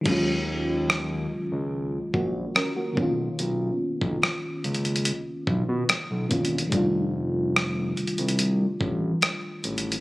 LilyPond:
<<
  \new Staff \with { instrumentName = "FM electric piano" } { \time 4/4 \key ees \minor \tempo 4 = 72 r2 r8 <bes ges'>8 <des' bes'>16 <bes ges'>8 r16 | r1 | r1 | }
  \new Staff \with { instrumentName = "FM electric piano" } { \time 4/4 \key ees \minor <ees ges aes des' f'>2.~ <ees ges aes des' f'>8 <d dis ais b cis' eis'>8~ | <d dis ais b cis' eis'>2.~ <d dis ais b cis' eis'>8 <dis ais b cis' eis'>8 | <ees g a d' f'>1 | }
  \new Staff \with { instrumentName = "Analog synth bass" } { \clef bass \time 4/4 \key ees \minor ees,4. des,16 des,8. bes,,8 r8 b,,8 | b,,8 r16 b,,16 r8 cis,8. r16 b,,16 b,16 r16 b,,16 fes,,8 | f,,4. c,16 c,8. a,,8 r8 a,,8 | }
  \new DrumStaff \with { instrumentName = "Drums" } \drummode { \time 4/4 <cymc bd>4 ss4 r8 bd8 ss8 bd8 | hh8. bd16 ss8 hh32 hh32 hh32 hh32 hh8 bd8 \tuplet 3/2 { <hh ss>16 r16 r16 <hh bd>16 hh16 hh16 } | <hh bd>4 ss8 hh32 hh32 hh32 hh32 hh8 bd8 \tuplet 3/2 { <hh ss>16 r16 r16 hh16 hh16 hh16 } | }
>>